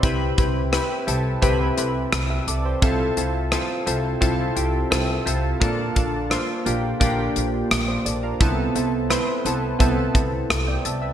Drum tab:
HH |xxxxxxxx|xxxxxxxx|xxxxxxxx|xxxxxxxx|
SD |--r---r-|--r---r-|--r---r-|--r---r-|
BD |oo--o---|o---o---|oo--o---|o---oo--|